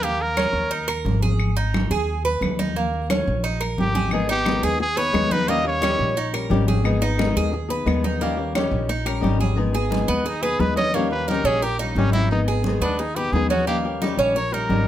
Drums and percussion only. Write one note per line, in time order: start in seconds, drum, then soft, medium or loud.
0.03 high conga soft
0.20 high conga soft
0.37 high conga medium
0.37 claves medium
0.55 high conga soft
0.72 high conga soft
0.89 high conga soft
0.89 claves medium
1.06 high conga medium
1.23 high conga medium
1.40 high conga soft
1.40 claves medium
1.58 high conga soft
1.74 high conga medium
1.74 claves medium
2.09 high conga soft
2.26 high conga soft
2.42 high conga medium
2.42 claves medium
2.59 high conga medium
2.76 high conga soft
2.94 high conga soft
3.10 high conga medium
3.10 claves medium
3.28 high conga soft
3.44 high conga soft
3.61 high conga soft
3.61 claves medium
3.78 high conga medium
3.95 high conga medium
4.11 high conga soft
4.11 claves medium
4.29 high conga soft
4.46 high conga medium
4.46 claves medium
4.80 high conga soft
4.97 high conga soft
5.14 high conga loud
5.14 claves medium
5.31 high conga medium
5.49 high conga soft
5.65 high conga soft
5.82 high conga medium
5.82 claves medium
5.99 high conga soft
6.17 high conga soft
6.34 high conga soft
6.34 claves medium
6.51 high conga medium
6.68 high conga medium
6.85 high conga soft
6.85 claves medium
7.02 high conga soft
7.19 high conga medium
7.19 claves medium
7.54 high conga soft
7.71 high conga soft
7.87 high conga medium
7.87 claves medium
8.04 high conga medium
8.21 high conga soft
8.39 high conga soft
8.55 high conga medium
8.55 claves medium
8.73 high conga soft
8.89 high conga soft
9.06 high conga soft
9.06 claves medium
9.24 high conga medium
9.41 high conga medium
9.58 high conga soft
9.75 high conga soft
9.92 high conga medium
10.27 high conga soft
10.44 high conga soft
10.60 high conga medium
10.77 high conga medium
10.94 high conga soft
11.11 high conga soft
11.28 high conga medium
11.46 high conga soft
11.62 high conga soft
11.80 high conga soft
11.96 high conga medium
12.13 high conga medium
12.30 high conga soft
12.48 high conga soft
12.64 high conga medium
12.99 high conga soft
13.16 high conga soft
13.33 high conga medium
13.50 high conga medium
13.68 high conga soft
13.85 high conga soft
14.02 high conga medium
14.19 high conga soft
14.36 high conga soft
14.53 high conga soft
14.70 high conga medium